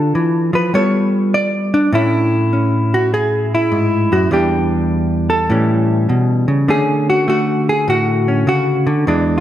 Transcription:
Already playing: D3 D4 F4 A4
0.15 E3
0.53 F3 B4
0.74 G3 B3 F4 A4 C#5
1.34 D5
1.74 D4
1.93 A2 A3 C#4 E4
2.53 C#4
2.94 F#4
3.14 G#4
3.55 E4
3.72 G#2
4.12 F#2 F#4
4.31 E2 E3 G3 D4 G4
5.30 A4
5.50 A2 E3 G3 C#4
6.09 B2
6.48 C#3
6.68 D3 A3 C#4 G#4
7.10 F#4
7.28 A3 F#4
7.69 G#4
7.88 A2 F#4
8.28 C#4
8.47 C#3 F#4
8.87 D3
9.07 E2 E3 G#3 D4

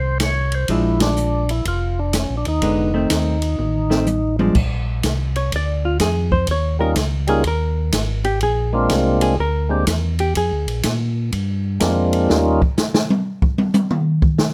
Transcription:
Already playing: C2 D#3 A3 C4 C5
0.20 C#5, snare, hi-hat pedal, ride
0.52 C5, ride
0.68 A#1 F3 G#3 D4 E4, kick, ride
1.00 D4, snare, ride
1.17 hi-hat pedal
1.49 E4, ride
1.65 F1 F4, kick, ride
1.99 D4
2.13 C#4, snare, hi-hat pedal, ride
2.30 A#1
2.37 D4
2.45 D#2 D#4, ride
2.62 F1 D3 G#3 B3, kick, ride
2.94 D#3 A3 C4
3.10 D#2, snare, hi-hat pedal, ride
3.42 ride
3.58 A1, mid tom
3.90 D#3 A3 C4, snare
4.06 hi-hat pedal, high tom
4.39 F3 G#3 D4, high tom
4.55 A#1, kick, crash
5.03 C2, kick, snare, hi-hat pedal, ride
5.36 C#5, ride
5.52 D2 D5, kick, ride
5.85 F4
6.00 F2 G#4, kick, snare, hi-hat pedal, ride
6.32 C5, kick
6.47 D#2, kick, ride
6.51 C#5
6.79 G3 A#3 C#4 D#4 F4 A#4
6.96 C#2, kick, snare, hi-hat pedal, ride
7.27 G3 A#3 C#4 D#4 F4 G#4, ride
7.44 D#2 A#4, kick, ride
7.92 G#1, kick, snare, hi-hat pedal, ride
8.24 G4, ride
8.41 A#1 G#4, kick, ride
8.73 G#3 A#3 C4 D4 F4
8.90 C2, kick, snare, hi-hat pedal, ride
9.21 G#4, ride
9.38 D2 A#4, kick
9.69 G#3 A#3 C4 D4 G4
9.87 E2, kick, snare, hi-hat pedal, ride
10.19 G4, ride
10.35 F2 G#4, kick, ride
10.51 D2
10.67 A#1, ride
10.83 A#2, kick, snare, hi-hat pedal, ride
11.32 G2, kick, ride
11.80 F2 G#3 A#3 C4 D4 F4, kick, snare, hi-hat pedal, ride
12.13 ride
12.29 D#2 G3 A#3 C#4 D#4 F4, snare
12.62 kick
12.77 snare, hi-hat pedal
12.94 snare
13.10 high tom
13.42 kick
13.58 high tom
13.74 hi-hat pedal, high tom
13.90 mid tom
14.22 kick
14.38 snare

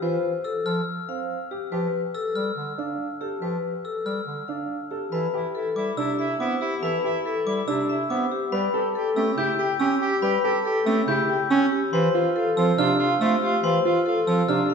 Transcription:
0.02 E3 F4 C5
0.44 A4 E6
0.66 F3 F6
1.08 C4 F5
1.51 G4
1.72 F3 G4 B4
2.15 A4 E6
2.36 G3 F6
2.57 D3
2.78 D4 F5
3.21 G4 A4
3.41 F3 G4 B4
3.84 A4 E6
4.06 G3 F6
4.27 D3
4.48 D4 F5
4.91 G4 A4
5.12 E3 E4 A4 B4 B5
5.33 E4 G4
5.55 E4 A4
5.76 G3 E4 D6
5.97 C3 D4 E4 G4 E6
6.19 E4 E5
6.40 B3 C4 E4 D6
6.61 E4 G4
6.82 E3 E4 A4 B4 B5
7.04 E4 G4
7.25 E4 A4
7.46 G3 E4 D6
7.68 C3 D4 E4 G4 E6
7.89 E4 E5
8.10 B3 C4 E4 D6
8.32 G4
8.52 G3 G4 B4 B5
8.74 G4 A4
8.95 G4 A4
9.16 A3 C#4 G4 E6
9.37 C#3 E4 G4 G6
9.59 G4 G5
9.80 C#4 G4 E6
10.02 G4
10.22 G3 G4 B4 B5
10.44 G4 A4
10.65 G4 A4
10.86 A3 C#4 G4 E6
11.07 C#3 E4 G4 G6
11.29 G4 G5
11.50 C#4 G4 E6
11.72 G4
11.93 E3 F4 G4 C5 C6
12.15 F4
12.36 F4 A4
12.57 F3 C4 F4 E6
12.78 C3 D4 F4 G4 F6
12.99 F4 F5
13.20 A3 C4 F4 E6
13.42 F4 G4
13.63 E3 F4 G4 C5 C6
13.85 F4
14.06 F4 A4
14.27 F3 C4 F4 E6
14.49 C3 D4 F4 G4 F6
14.70 F4 F5

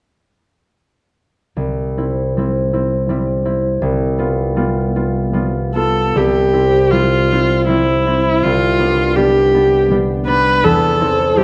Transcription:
1.57 C2
1.97 C4 E4
2.37 G3 C4 E4
2.73 C4 E4
3.09 G3 C4 E4
3.45 C4 E4
3.82 C2
4.19 B3 F4
4.56 G3 B3 F4
4.96 B3 F4
5.33 G3 B3 F4
5.75 B3 F4 A4
6.16 C2 G4
6.53 C4 E4
6.91 G3 C4 E4 F4
7.32 C4 E4
7.68 G3 C4 E4
8.07 C4 E4
8.43 C2 F4
8.79 B3 D4
9.15 G3 B3 D4 G4
9.54 B3 D4
9.90 G3 B3 D4
10.27 B3 D4 B4
10.63 E2 A4
11.01 C4 E4
11.36 G3 C4 E4 G4

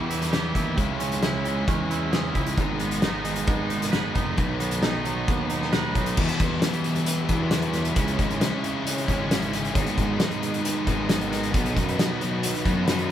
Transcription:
Already playing: E2 E3 G3 B3 E4
0.08 G3 B3 E4, closed hi-hat
0.22 snare, closed hi-hat
0.30 E3 G3 B3 E4 G4, snare, closed hi-hat
0.53 D#2 G3 B3 E4, kick, closed hi-hat
0.76 C#2 C#3 G#3 C#4 E4, kick, closed hi-hat
0.99 G#3 C#4 E4, closed hi-hat
1.12 closed hi-hat
1.21 C#3 G#3 C#4 E4, snare, closed hi-hat
1.44 C#3 G#3 C#4 E4, closed hi-hat
1.66 E2 C#3 G#3 C#4 E4, kick, closed hi-hat
1.89 G#3 C#4 E4, closed hi-hat
2.11 C#3 G#3 C#4 E4 G#4, snare, closed hi-hat
2.34 C#2 G#3 C#4 E4, kick, closed hi-hat
2.46 closed hi-hat
2.56 G#1 G#2 D#3 G#3 B3 D#4, kick, closed hi-hat
2.79 G#3 B3 D#4, closed hi-hat
2.91 closed hi-hat
3.02 D#3 G#3 B3 D#4, snare, closed hi-hat
3.24 G#2 D#3 G#3 B3 D#4, closed hi-hat
3.36 closed hi-hat
3.47 G#1 D#3 G#3 B3 D#4, kick, closed hi-hat
3.70 G#3 B3 D#4, closed hi-hat
3.82 snare, closed hi-hat
3.91 G#2 D#3 G#3 B3 D#4 B4, snare, closed hi-hat
4.14 F1 G#3 B3 D#4, kick, closed hi-hat
4.36 B1 B2 D#3 F#3 B3 D#4, kick, closed hi-hat
4.59 F#3 B3 D#4, closed hi-hat
4.71 closed hi-hat
4.82 D#3 F#3 B3 D#4, snare, closed hi-hat
5.04 B2 D#3 F#3 B3 D#4, closed hi-hat
5.28 D#2 D#3 F#3 B3 D#4, kick, closed hi-hat
5.50 F#3 B3 D#4, closed hi-hat
5.61 snare
5.72 B2 D#3 F#3 B3 D#4 B4, snare, closed hi-hat
5.95 B1 F#3 B3 D#4, kick, closed hi-hat
6.06 closed hi-hat
6.17 E2 B2 E3 G3 B3 E4 G4 B4 E5 B5, kick, crash
6.29 closed hi-hat
6.39 E2 G3 B3 E4, kick, closed hi-hat
6.62 E3 G3 B3 E4, snare, closed hi-hat
6.73 closed hi-hat
6.84 G3 B3 E4, closed hi-hat
6.95 closed hi-hat
7.06 closed hi-hat
7.29 E2 B2 E3 G3 B3 E4, kick, closed hi-hat
7.51 E2 B2 E3 G3 B3 E4, snare, closed hi-hat
7.62 closed hi-hat
7.73 G3 B3 E4, snare, closed hi-hat
7.85 closed hi-hat
7.95 C#2 C#3 G#3 C#4 E4 G#4 C#5 C#6, kick, closed hi-hat
8.08 closed hi-hat
8.17 G#1 G#3 C#4 E4, kick, closed hi-hat
8.30 closed hi-hat
8.39 C#3 G#3 C#4 E4, snare, closed hi-hat
8.62 G#3 C#4 E4, closed hi-hat
8.87 closed hi-hat
8.98 closed hi-hat
9.06 G#1 G#3 C#4 E4, kick, closed hi-hat
9.11 C#3
9.28 C#3 G#3 C#4 E4, snare, closed hi-hat
9.42 closed hi-hat
9.51 G#3 C#4 E4, snare, closed hi-hat
9.65 closed hi-hat
9.72 G#1 G#2 D#3 G#3 B3 D#4, kick, closed hi-hat
9.77 B4 D#5 B5
9.87 closed hi-hat
9.95 G#1 G#3 B3 D#4, kick, closed hi-hat
10.18 G#2 D#3 G#3 B3 D#4, snare, closed hi-hat
10.31 closed hi-hat
10.40 G#3 B3 D#4, closed hi-hat
10.54 closed hi-hat
10.65 closed hi-hat
10.86 G#1 G#2 D#3 G#3 B3 D#4, kick, closed hi-hat
11.07 G#2 D#3 G#3 B3 D#4, snare, closed hi-hat
11.21 closed hi-hat
11.29 G#3 B3 D#4, snare, closed hi-hat
11.43 closed hi-hat
11.51 B1 B2 D#3 F#3 B3 D#4 F#4, kick, closed hi-hat
11.66 closed hi-hat
11.74 F#2 F#3 B3 D#4, kick, closed hi-hat
11.89 closed hi-hat
11.97 B2 D#3 F#3 B3 D#4, snare, closed hi-hat
12.20 F#3 B3 D#4, closed hi-hat
12.43 closed hi-hat
12.55 closed hi-hat
12.64 F#2 B2 F#3 B3 D#4, kick, closed hi-hat
12.86 B2 D#3 F#3 B3 D#4, snare, closed hi-hat
12.99 closed hi-hat

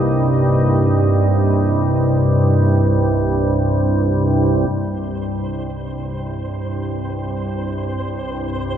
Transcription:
Already playing: C2 G2 A#3 G4 D#5
4.70 C2 G2 C5

